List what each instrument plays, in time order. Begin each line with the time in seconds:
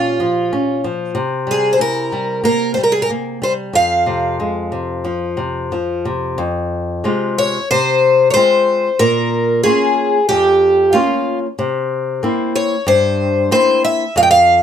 Already playing: nylon-string guitar A#2 C#4, twelve-string acoustic guitar F4
0.20 nylon-string guitar F3
0.53 nylon-string guitar C#4
0.84 nylon-string guitar F3
1.15 nylon-string guitar C3
1.47 nylon-string guitar G3
1.51 twelve-string acoustic guitar G#4
1.73 twelve-string acoustic guitar C5
1.79 nylon-string guitar E4, twelve-string acoustic guitar A#4
2.12 nylon-string guitar G3
2.44 nylon-string guitar A#3, twelve-string acoustic guitar A#4
2.74 nylon-string guitar G3, twelve-string acoustic guitar C5
2.83 twelve-string acoustic guitar A#4
2.92 twelve-string acoustic guitar G#4
3.02 twelve-string acoustic guitar A#4
3.10 nylon-string guitar A#3
3.42 nylon-string guitar G3, twelve-string acoustic guitar C5
3.73 nylon-string guitar F2, twelve-string acoustic guitar F5
4.06 nylon-string guitar C3
4.40 nylon-string guitar G#3
4.72 nylon-string guitar C3
5.05 nylon-string guitar F3
5.37 nylon-string guitar C3
5.72 nylon-string guitar F3
6.05 nylon-string guitar C3
6.38 nylon-string guitar F2
7.04 nylon-string guitar C3 G#3 F4
7.38 twelve-string acoustic guitar C#5
7.71 nylon-string guitar C3, twelve-string acoustic guitar C5
8.30 twelve-string acoustic guitar C5 C#5
8.36 nylon-string guitar G#3 C4 F4
8.99 nylon-string guitar A#2, twelve-string acoustic guitar A#4
9.63 nylon-string guitar A#3 C#4 F4, twelve-string acoustic guitar G#4
10.29 nylon-string guitar F2, twelve-string acoustic guitar G4
10.93 nylon-string guitar A#3 C#4 F4, twelve-string acoustic guitar F4
11.59 nylon-string guitar C3
12.23 nylon-string guitar A#3 C4 E4
12.56 twelve-string acoustic guitar C#5
12.87 nylon-string guitar G2, twelve-string acoustic guitar C5
13.51 nylon-string guitar A#3 C4 E4, twelve-string acoustic guitar C5
13.84 twelve-string acoustic guitar E5
14.16 nylon-string guitar F2, twelve-string acoustic guitar F5
14.23 twelve-string acoustic guitar G5
14.31 twelve-string acoustic guitar F5